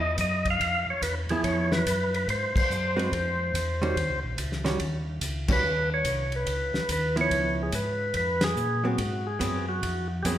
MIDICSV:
0, 0, Header, 1, 5, 480
1, 0, Start_track
1, 0, Tempo, 419580
1, 689, Time_signature, 4, 2, 24, 8
1, 11875, End_track
2, 0, Start_track
2, 0, Title_t, "Tonewheel organ"
2, 0, Program_c, 0, 16
2, 0, Note_on_c, 0, 75, 107
2, 186, Note_off_c, 0, 75, 0
2, 237, Note_on_c, 0, 75, 92
2, 546, Note_off_c, 0, 75, 0
2, 577, Note_on_c, 0, 77, 127
2, 998, Note_off_c, 0, 77, 0
2, 1032, Note_on_c, 0, 73, 77
2, 1172, Note_off_c, 0, 73, 0
2, 1175, Note_on_c, 0, 71, 83
2, 1315, Note_off_c, 0, 71, 0
2, 1492, Note_on_c, 0, 68, 72
2, 1641, Note_off_c, 0, 68, 0
2, 1649, Note_on_c, 0, 73, 96
2, 1970, Note_on_c, 0, 71, 101
2, 1972, Note_off_c, 0, 73, 0
2, 2454, Note_off_c, 0, 71, 0
2, 2467, Note_on_c, 0, 71, 82
2, 2609, Note_off_c, 0, 71, 0
2, 2633, Note_on_c, 0, 72, 87
2, 2928, Note_off_c, 0, 72, 0
2, 2942, Note_on_c, 0, 72, 95
2, 4804, Note_off_c, 0, 72, 0
2, 6321, Note_on_c, 0, 71, 114
2, 6747, Note_off_c, 0, 71, 0
2, 6793, Note_on_c, 0, 73, 110
2, 7269, Note_off_c, 0, 73, 0
2, 7277, Note_on_c, 0, 71, 85
2, 7908, Note_off_c, 0, 71, 0
2, 7922, Note_on_c, 0, 71, 85
2, 8196, Note_off_c, 0, 71, 0
2, 8247, Note_on_c, 0, 73, 122
2, 8716, Note_off_c, 0, 73, 0
2, 8725, Note_on_c, 0, 68, 81
2, 8857, Note_off_c, 0, 68, 0
2, 8864, Note_on_c, 0, 71, 87
2, 9331, Note_off_c, 0, 71, 0
2, 9344, Note_on_c, 0, 71, 101
2, 9653, Note_on_c, 0, 68, 111
2, 9658, Note_off_c, 0, 71, 0
2, 10130, Note_on_c, 0, 66, 89
2, 10141, Note_off_c, 0, 68, 0
2, 10601, Note_on_c, 0, 68, 94
2, 10619, Note_off_c, 0, 66, 0
2, 11047, Note_off_c, 0, 68, 0
2, 11081, Note_on_c, 0, 66, 82
2, 11528, Note_off_c, 0, 66, 0
2, 11699, Note_on_c, 0, 67, 57
2, 11733, Note_off_c, 0, 67, 0
2, 11737, Note_on_c, 0, 68, 80
2, 11875, Note_off_c, 0, 68, 0
2, 11875, End_track
3, 0, Start_track
3, 0, Title_t, "Hollow-body jazz guitar"
3, 0, Program_c, 1, 26
3, 1493, Note_on_c, 1, 53, 62
3, 1503, Note_on_c, 1, 59, 74
3, 1510, Note_on_c, 1, 64, 75
3, 2099, Note_off_c, 1, 53, 0
3, 2104, Note_off_c, 1, 59, 0
3, 2108, Note_off_c, 1, 64, 0
3, 3391, Note_on_c, 1, 56, 61
3, 3392, Note_on_c, 1, 60, 63
3, 3394, Note_on_c, 1, 66, 66
3, 3406, Note_on_c, 1, 71, 72
3, 3544, Note_off_c, 1, 56, 0
3, 3545, Note_off_c, 1, 60, 0
3, 3546, Note_off_c, 1, 66, 0
3, 3552, Note_off_c, 1, 71, 0
3, 4365, Note_on_c, 1, 55, 73
3, 4366, Note_on_c, 1, 51, 70
3, 4379, Note_on_c, 1, 66, 82
3, 4383, Note_on_c, 1, 61, 73
3, 4511, Note_off_c, 1, 51, 0
3, 4511, Note_off_c, 1, 55, 0
3, 4518, Note_off_c, 1, 66, 0
3, 4520, Note_off_c, 1, 61, 0
3, 5313, Note_on_c, 1, 55, 76
3, 5316, Note_on_c, 1, 51, 65
3, 5319, Note_on_c, 1, 61, 71
3, 5326, Note_on_c, 1, 66, 69
3, 5465, Note_off_c, 1, 55, 0
3, 5466, Note_off_c, 1, 51, 0
3, 5467, Note_off_c, 1, 61, 0
3, 5471, Note_off_c, 1, 66, 0
3, 6273, Note_on_c, 1, 51, 51
3, 6280, Note_on_c, 1, 55, 53
3, 6286, Note_on_c, 1, 61, 57
3, 6290, Note_on_c, 1, 66, 52
3, 6424, Note_off_c, 1, 51, 0
3, 6428, Note_off_c, 1, 55, 0
3, 6431, Note_off_c, 1, 61, 0
3, 6433, Note_off_c, 1, 66, 0
3, 8191, Note_on_c, 1, 53, 73
3, 8202, Note_on_c, 1, 64, 74
3, 8204, Note_on_c, 1, 59, 70
3, 8806, Note_off_c, 1, 53, 0
3, 8812, Note_off_c, 1, 64, 0
3, 8813, Note_off_c, 1, 59, 0
3, 10109, Note_on_c, 1, 54, 58
3, 10120, Note_on_c, 1, 59, 69
3, 10125, Note_on_c, 1, 60, 72
3, 10263, Note_off_c, 1, 54, 0
3, 10268, Note_off_c, 1, 59, 0
3, 10270, Note_off_c, 1, 60, 0
3, 10745, Note_on_c, 1, 54, 51
3, 10754, Note_on_c, 1, 59, 60
3, 10768, Note_on_c, 1, 60, 58
3, 11039, Note_off_c, 1, 54, 0
3, 11043, Note_off_c, 1, 59, 0
3, 11050, Note_off_c, 1, 60, 0
3, 11724, Note_on_c, 1, 54, 61
3, 11735, Note_on_c, 1, 60, 64
3, 11736, Note_on_c, 1, 59, 58
3, 11875, Note_off_c, 1, 54, 0
3, 11875, Note_off_c, 1, 59, 0
3, 11875, Note_off_c, 1, 60, 0
3, 11875, End_track
4, 0, Start_track
4, 0, Title_t, "Tonewheel organ"
4, 0, Program_c, 2, 16
4, 0, Note_on_c, 2, 40, 69
4, 190, Note_off_c, 2, 40, 0
4, 201, Note_on_c, 2, 42, 89
4, 670, Note_off_c, 2, 42, 0
4, 683, Note_on_c, 2, 41, 82
4, 974, Note_off_c, 2, 41, 0
4, 988, Note_on_c, 2, 41, 37
4, 1074, Note_off_c, 2, 41, 0
4, 1166, Note_on_c, 2, 40, 80
4, 1448, Note_off_c, 2, 40, 0
4, 1461, Note_on_c, 2, 40, 38
4, 1549, Note_off_c, 2, 40, 0
4, 1646, Note_on_c, 2, 41, 79
4, 2112, Note_off_c, 2, 41, 0
4, 2127, Note_on_c, 2, 42, 90
4, 2592, Note_off_c, 2, 42, 0
4, 2607, Note_on_c, 2, 44, 79
4, 2900, Note_off_c, 2, 44, 0
4, 2925, Note_on_c, 2, 44, 42
4, 3007, Note_off_c, 2, 44, 0
4, 3084, Note_on_c, 2, 42, 84
4, 3550, Note_off_c, 2, 42, 0
4, 3569, Note_on_c, 2, 41, 80
4, 4032, Note_off_c, 2, 41, 0
4, 4047, Note_on_c, 2, 40, 85
4, 4512, Note_off_c, 2, 40, 0
4, 4525, Note_on_c, 2, 39, 86
4, 4680, Note_off_c, 2, 39, 0
4, 4683, Note_on_c, 2, 37, 56
4, 4840, Note_on_c, 2, 34, 61
4, 4844, Note_off_c, 2, 37, 0
4, 4991, Note_off_c, 2, 34, 0
4, 5003, Note_on_c, 2, 37, 79
4, 5469, Note_off_c, 2, 37, 0
4, 5479, Note_on_c, 2, 39, 72
4, 5947, Note_off_c, 2, 39, 0
4, 5965, Note_on_c, 2, 37, 88
4, 6430, Note_off_c, 2, 37, 0
4, 6442, Note_on_c, 2, 39, 81
4, 6908, Note_off_c, 2, 39, 0
4, 6913, Note_on_c, 2, 36, 78
4, 7383, Note_off_c, 2, 36, 0
4, 7400, Note_on_c, 2, 37, 80
4, 7688, Note_off_c, 2, 37, 0
4, 7702, Note_on_c, 2, 37, 33
4, 7788, Note_off_c, 2, 37, 0
4, 7880, Note_on_c, 2, 39, 87
4, 8347, Note_off_c, 2, 39, 0
4, 8353, Note_on_c, 2, 37, 75
4, 8824, Note_off_c, 2, 37, 0
4, 8838, Note_on_c, 2, 44, 88
4, 9306, Note_off_c, 2, 44, 0
4, 9310, Note_on_c, 2, 41, 80
4, 9782, Note_off_c, 2, 41, 0
4, 9788, Note_on_c, 2, 46, 87
4, 10261, Note_off_c, 2, 46, 0
4, 10279, Note_on_c, 2, 44, 88
4, 10748, Note_off_c, 2, 44, 0
4, 10756, Note_on_c, 2, 42, 90
4, 11226, Note_off_c, 2, 42, 0
4, 11245, Note_on_c, 2, 41, 75
4, 11709, Note_off_c, 2, 41, 0
4, 11723, Note_on_c, 2, 41, 90
4, 11875, Note_off_c, 2, 41, 0
4, 11875, End_track
5, 0, Start_track
5, 0, Title_t, "Drums"
5, 203, Note_on_c, 9, 44, 61
5, 203, Note_on_c, 9, 51, 70
5, 204, Note_on_c, 9, 36, 25
5, 318, Note_off_c, 9, 36, 0
5, 318, Note_off_c, 9, 44, 0
5, 318, Note_off_c, 9, 51, 0
5, 519, Note_on_c, 9, 36, 40
5, 520, Note_on_c, 9, 51, 47
5, 634, Note_off_c, 9, 36, 0
5, 634, Note_off_c, 9, 51, 0
5, 687, Note_on_c, 9, 36, 23
5, 694, Note_on_c, 9, 51, 62
5, 801, Note_off_c, 9, 36, 0
5, 808, Note_off_c, 9, 51, 0
5, 1165, Note_on_c, 9, 36, 26
5, 1172, Note_on_c, 9, 44, 55
5, 1172, Note_on_c, 9, 51, 70
5, 1279, Note_off_c, 9, 36, 0
5, 1286, Note_off_c, 9, 44, 0
5, 1286, Note_off_c, 9, 51, 0
5, 1478, Note_on_c, 9, 51, 46
5, 1592, Note_off_c, 9, 51, 0
5, 1645, Note_on_c, 9, 36, 26
5, 1647, Note_on_c, 9, 51, 59
5, 1759, Note_off_c, 9, 36, 0
5, 1761, Note_off_c, 9, 51, 0
5, 1965, Note_on_c, 9, 38, 57
5, 2080, Note_off_c, 9, 38, 0
5, 2127, Note_on_c, 9, 36, 22
5, 2135, Note_on_c, 9, 44, 69
5, 2135, Note_on_c, 9, 51, 80
5, 2241, Note_off_c, 9, 36, 0
5, 2249, Note_off_c, 9, 44, 0
5, 2249, Note_off_c, 9, 51, 0
5, 2452, Note_on_c, 9, 51, 46
5, 2567, Note_off_c, 9, 51, 0
5, 2608, Note_on_c, 9, 36, 18
5, 2616, Note_on_c, 9, 51, 56
5, 2722, Note_off_c, 9, 36, 0
5, 2731, Note_off_c, 9, 51, 0
5, 2925, Note_on_c, 9, 36, 81
5, 2936, Note_on_c, 9, 49, 64
5, 3039, Note_off_c, 9, 36, 0
5, 3050, Note_off_c, 9, 49, 0
5, 3098, Note_on_c, 9, 44, 59
5, 3213, Note_off_c, 9, 44, 0
5, 3423, Note_on_c, 9, 51, 50
5, 3538, Note_off_c, 9, 51, 0
5, 3572, Note_on_c, 9, 36, 24
5, 3579, Note_on_c, 9, 51, 61
5, 3686, Note_off_c, 9, 36, 0
5, 3694, Note_off_c, 9, 51, 0
5, 4051, Note_on_c, 9, 36, 22
5, 4061, Note_on_c, 9, 44, 65
5, 4061, Note_on_c, 9, 51, 74
5, 4166, Note_off_c, 9, 36, 0
5, 4175, Note_off_c, 9, 44, 0
5, 4175, Note_off_c, 9, 51, 0
5, 4378, Note_on_c, 9, 51, 46
5, 4492, Note_off_c, 9, 51, 0
5, 4533, Note_on_c, 9, 36, 19
5, 4544, Note_on_c, 9, 51, 63
5, 4647, Note_off_c, 9, 36, 0
5, 4658, Note_off_c, 9, 51, 0
5, 5008, Note_on_c, 9, 36, 22
5, 5010, Note_on_c, 9, 44, 47
5, 5010, Note_on_c, 9, 51, 76
5, 5123, Note_off_c, 9, 36, 0
5, 5125, Note_off_c, 9, 44, 0
5, 5125, Note_off_c, 9, 51, 0
5, 5172, Note_on_c, 9, 38, 31
5, 5286, Note_off_c, 9, 38, 0
5, 5328, Note_on_c, 9, 51, 48
5, 5329, Note_on_c, 9, 38, 44
5, 5442, Note_off_c, 9, 51, 0
5, 5444, Note_off_c, 9, 38, 0
5, 5485, Note_on_c, 9, 36, 20
5, 5487, Note_on_c, 9, 51, 59
5, 5600, Note_off_c, 9, 36, 0
5, 5601, Note_off_c, 9, 51, 0
5, 5963, Note_on_c, 9, 36, 18
5, 5964, Note_on_c, 9, 44, 59
5, 5964, Note_on_c, 9, 51, 75
5, 6078, Note_off_c, 9, 36, 0
5, 6078, Note_off_c, 9, 44, 0
5, 6078, Note_off_c, 9, 51, 0
5, 6273, Note_on_c, 9, 49, 76
5, 6277, Note_on_c, 9, 36, 76
5, 6387, Note_off_c, 9, 49, 0
5, 6392, Note_off_c, 9, 36, 0
5, 6917, Note_on_c, 9, 44, 54
5, 6917, Note_on_c, 9, 51, 74
5, 6919, Note_on_c, 9, 36, 25
5, 7032, Note_off_c, 9, 44, 0
5, 7032, Note_off_c, 9, 51, 0
5, 7034, Note_off_c, 9, 36, 0
5, 7230, Note_on_c, 9, 51, 44
5, 7344, Note_off_c, 9, 51, 0
5, 7397, Note_on_c, 9, 36, 20
5, 7397, Note_on_c, 9, 51, 63
5, 7511, Note_off_c, 9, 36, 0
5, 7511, Note_off_c, 9, 51, 0
5, 7714, Note_on_c, 9, 38, 51
5, 7828, Note_off_c, 9, 38, 0
5, 7879, Note_on_c, 9, 36, 21
5, 7880, Note_on_c, 9, 44, 57
5, 7880, Note_on_c, 9, 51, 75
5, 7994, Note_off_c, 9, 36, 0
5, 7995, Note_off_c, 9, 44, 0
5, 7995, Note_off_c, 9, 51, 0
5, 8202, Note_on_c, 9, 51, 49
5, 8317, Note_off_c, 9, 51, 0
5, 8360, Note_on_c, 9, 36, 18
5, 8365, Note_on_c, 9, 51, 57
5, 8474, Note_off_c, 9, 36, 0
5, 8479, Note_off_c, 9, 51, 0
5, 8835, Note_on_c, 9, 44, 69
5, 8835, Note_on_c, 9, 51, 71
5, 8837, Note_on_c, 9, 36, 19
5, 8950, Note_off_c, 9, 44, 0
5, 8950, Note_off_c, 9, 51, 0
5, 8951, Note_off_c, 9, 36, 0
5, 9310, Note_on_c, 9, 51, 64
5, 9314, Note_on_c, 9, 36, 18
5, 9424, Note_off_c, 9, 51, 0
5, 9428, Note_off_c, 9, 36, 0
5, 9621, Note_on_c, 9, 38, 74
5, 9621, Note_on_c, 9, 51, 66
5, 9735, Note_off_c, 9, 38, 0
5, 9735, Note_off_c, 9, 51, 0
5, 9798, Note_on_c, 9, 44, 56
5, 9913, Note_off_c, 9, 44, 0
5, 10276, Note_on_c, 9, 51, 61
5, 10277, Note_on_c, 9, 36, 21
5, 10391, Note_off_c, 9, 36, 0
5, 10391, Note_off_c, 9, 51, 0
5, 10759, Note_on_c, 9, 36, 25
5, 10761, Note_on_c, 9, 44, 54
5, 10761, Note_on_c, 9, 51, 76
5, 10873, Note_off_c, 9, 36, 0
5, 10876, Note_off_c, 9, 44, 0
5, 10876, Note_off_c, 9, 51, 0
5, 11244, Note_on_c, 9, 36, 22
5, 11244, Note_on_c, 9, 51, 65
5, 11358, Note_off_c, 9, 36, 0
5, 11358, Note_off_c, 9, 51, 0
5, 11724, Note_on_c, 9, 36, 20
5, 11725, Note_on_c, 9, 44, 66
5, 11725, Note_on_c, 9, 51, 69
5, 11838, Note_off_c, 9, 36, 0
5, 11839, Note_off_c, 9, 44, 0
5, 11839, Note_off_c, 9, 51, 0
5, 11875, End_track
0, 0, End_of_file